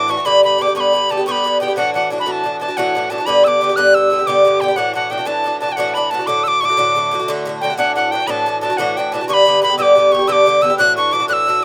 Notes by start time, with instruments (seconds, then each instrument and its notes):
Already playing: tin whistle D6
0.08 bouzouki A2 E3 D4 F#4, tin whistle C#6
0.17 bouzouki E3 D4 F#4
0.22 bouzouki G2 D3, tin whistle B5 C#6
0.27 bouzouki B3 G4
0.43 bouzouki G2 D3 B3 G4, tin whistle B5
0.58 bouzouki G2 D3 B3 G4, tin whistle D6
0.67 bouzouki D3 B3 G4
0.75 bouzouki G2 D3 B3 G4, tin whistle C#6
0.80 tin whistle B5
0.93 bouzouki G2 D3 B3 G4
1.09 bouzouki G2 D3 B3 G4, tin whistle A5
1.17 bouzouki D3 B3 G4
1.26 bouzouki G2 D3 B3 G4, tin whistle C#6
1.31 tin whistle B5
1.44 bouzouki G2 D3 B3 G4
1.60 bouzouki G2 D3 B3 G4, tin whistle G5
1.68 bouzouki D3 B3 G4
1.76 bouzouki A2 E3 D4 F#4, tin whistle F#5
1.94 bouzouki A2 E3 D4 F#4, tin whistle F#5
2.10 bouzouki A2 E3 D4 F#4
2.18 bouzouki E3 D4 F#4, tin whistle B5
2.26 bouzouki A2 E3 D4 F#4, tin whistle B5
2.31 tin whistle A5
2.44 bouzouki A2 E3 D4 F#4
2.60 bouzouki A2 E3 D4 F#4, tin whistle A5
2.68 bouzouki E3 D4 F#4
2.77 bouzouki A2 E3 D4 F#4, tin whistle F#5
2.95 bouzouki A2 E3 D4 F#4
3.10 bouzouki A2 E3 D4 F#4, tin whistle A5
3.18 bouzouki E3 D4 F#4
3.26 bouzouki G2 D3 B3 G4, tin whistle B5
3.44 bouzouki G2 D3 B3 G4, tin whistle D6 E6
3.61 bouzouki G2 D3 B3 G4
3.69 bouzouki D3 B3 G4
3.76 bouzouki G2 D3 B3 G4, tin whistle F#6
3.94 bouzouki G2 D3 B3 G4, tin whistle E6
4.10 bouzouki G2 D3 B3 G4
4.18 bouzouki D3 B3 G4
4.27 bouzouki G2 D3 B3 G4, tin whistle D6
4.45 bouzouki G2 D3 B3 G4
4.60 bouzouki G2 D3 B3 G4, tin whistle G5
4.68 bouzouki D3 B3 G4
4.76 bouzouki A2 E3 D4 F#4, tin whistle F#5
4.94 bouzouki A2 E3 D4 F#4, tin whistle F#5
5.10 bouzouki A2 E3 D4 F#4, tin whistle G5
5.18 bouzouki E3 D4 F#4
5.25 bouzouki A2 E3 D4 F#4, tin whistle A5
5.44 bouzouki A2 E3 D4 F#4
5.60 bouzouki A2 E3 D4 F#4, tin whistle A5
5.68 bouzouki E3 D4 F#4
5.72 tin whistle G5
5.76 bouzouki A2 E3 D4 F#4, tin whistle F#5
5.94 bouzouki A2 E3 D4 F#4, tin whistle B5
6.10 bouzouki A2 E3 F#4, tin whistle A5
6.19 bouzouki E3 D4 F#4
6.27 bouzouki A2 D3 A3 F#4, tin whistle D6
6.44 bouzouki A2 D3 A3, tin whistle E6
6.48 bouzouki F#4, tin whistle D6
6.61 bouzouki A2 D3 A3 F#4, tin whistle C#6
6.65 tin whistle D6
6.69 bouzouki D3 A3 F#4
6.77 bouzouki A2 D3 A3 F#4
6.95 bouzouki A2 D3 A3 F#4
7.11 bouzouki A2 D3 A3 F#4
7.19 bouzouki D3 A3 F#4
7.28 bouzouki A2 D3 A3 F#4
7.45 bouzouki A2 D3 A3 F#4
7.61 bouzouki A2 D3 A3 F#4, tin whistle G5
7.70 bouzouki D3 A3 F#4
7.78 bouzouki A2 E3 D4 F#4, tin whistle F#5
7.96 bouzouki A2 E3 D4 F#4, tin whistle F#5
8.11 bouzouki A2 E3 F#4, tin whistle G5
8.20 bouzouki E3 D4 F#4
8.27 bouzouki A2 E3 D4 F#4, tin whistle A5 B5
8.46 bouzouki A2 E3 D4 F#4
8.61 bouzouki A2 E3 D4 F#4, tin whistle A5
8.70 bouzouki E3 D4 F#4
8.77 bouzouki A2 E3 D4 F#4, tin whistle F#5
8.97 bouzouki A2 E3 D4 F#4, tin whistle G5
9.12 bouzouki A2 E3 D4 F#4, tin whistle A5
9.21 bouzouki E3 D4 F#4
9.28 bouzouki G2 D3 B3 G4, tin whistle C#6
9.34 tin whistle B5
9.46 bouzouki G2 D3 B3 G4
9.62 bouzouki G2 D3 B3 G4, tin whistle B5
9.70 bouzouki D3 B3 G4
9.78 bouzouki G2 D3 B3 G4, tin whistle E6
9.82 tin whistle D6
9.95 bouzouki G2 D3 B3 G4
10.12 bouzouki G2 D3 B3 G4, tin whistle C#6
10.19 bouzouki D3 B3 G4
10.27 bouzouki G2 D3 B3 G4, tin whistle E6
10.32 tin whistle D6
10.46 bouzouki G2 D3 B3 G4
10.61 bouzouki G2 D3 B3 G4, tin whistle E6
10.70 bouzouki D3 B3 G4
10.78 bouzouki A2 E3 D4 F#4, tin whistle F#6
10.97 bouzouki A2 E3 D4 F#4, tin whistle C#6
11.11 bouzouki A2 E3 F#4, tin whistle D6
11.20 bouzouki E3 D4 F#4
11.28 bouzouki A2 E3 D4 F#4, tin whistle F#6
11.33 tin whistle E6
11.47 bouzouki A2 E3 D4 F#4